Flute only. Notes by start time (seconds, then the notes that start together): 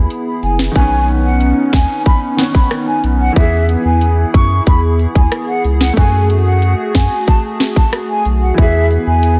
0.43 G#5
0.76 G#5
1.25 F#5
1.74 G#5
2.06 B5
2.55 B5
2.88 G#5
3.20 F#5
3.37 E5
3.85 G#5
4.34 C#6
4.67 B5
5.16 G#5
5.48 F#5
5.81 F#5
5.97 G#5
6.46 F#5
6.95 G#5
7.28 A5
7.77 A5
8.09 G#5
8.42 F#5
8.58 E5
9.07 G#5